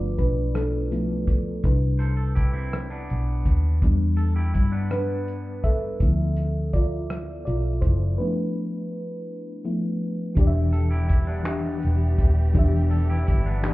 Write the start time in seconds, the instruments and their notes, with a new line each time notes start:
Already playing: fingered electric bass G1, fm electric piano F3 A3 B3 D4 E4 F4 B4 D5
0.18 fingered electric bass B1, fm electric piano D4 B4, kick, closed hi-hat
0.55 fm electric piano D4 A4, cross-stick, closed hi-hat
0.91 fm electric piano F3 A3 B3 E4, closed hi-hat
1.27 kick, closed hi-hat
1.64 fingered electric bass C2, fm electric piano D4 E4 B4, kick, closed hi-hat
1.99 clean electric guitar A4 C5, closed hi-hat
2.17 clean electric guitar A4
2.35 clean electric guitar E4 G4, kick, closed hi-hat
2.53 clean electric guitar C4 E4
2.73 cross-stick, closed hi-hat
2.90 clean electric guitar B3 D4
3.10 fingered electric bass B1, closed hi-hat
3.46 fingered electric bass D#2, kick, closed hi-hat
3.82 fingered electric bass E2, fm electric piano G3 B3 D4, kick, closed hi-hat
4.17 clean electric guitar A4, closed hi-hat
4.36 clean electric guitar E4 G4
4.54 fingered electric bass G2, clean electric guitar E4, kick, closed hi-hat
4.72 clean electric guitar B3 D4
4.91 fm electric piano D4 B4, cross-stick, closed hi-hat
5.28 closed hi-hat
5.64 fm electric piano A4 E5, kick, closed hi-hat
6.00 fingered electric bass D2, fm electric piano F3 B3 E4, kick, closed hi-hat
6.37 closed hi-hat
6.73 fm electric piano F4 D5, kick, closed hi-hat
7.10 cross-stick, closed hi-hat
7.45 fingered electric bass B1, fm electric piano F4 D5, closed hi-hat
7.81 fingered electric bass F#1, fm electric piano E4 C5, kick, closed hi-hat
8.18 fm electric piano F3 A3 B3 D4 E4 B4
9.65 fm electric piano F3 A3 B3 E4
10.35 fingered electric bass E1, fm electric piano E3 D4 G4, string section E3 G3 B3 G4 D5, kick, closed hi-hat
10.41 fm electric piano D5
10.47 fm electric piano E5
10.73 clean electric guitar A4, closed hi-hat
10.91 clean electric guitar E4 G4
11.09 clean electric guitar E4, kick, closed hi-hat
11.27 clean electric guitar B3 D4
11.43 fm electric piano E3 D4 G4, clap, closed hi-hat
11.49 fm electric piano E5
11.82 fingered electric bass E1, closed hi-hat
12.18 fingered electric bass D#1, kick, closed hi-hat
12.53 fingered electric bass E1, fm electric piano E3 D4 G4, kick, closed hi-hat
12.59 fm electric piano E5
12.91 clean electric guitar A4, closed hi-hat
13.10 clean electric guitar E4 G4
13.27 fingered electric bass G1, clean electric guitar E4, kick, closed hi-hat
13.46 clean electric guitar B3 D4
13.62 fm electric piano E3 D4 G4, clap, closed hi-hat
13.68 fm electric piano D5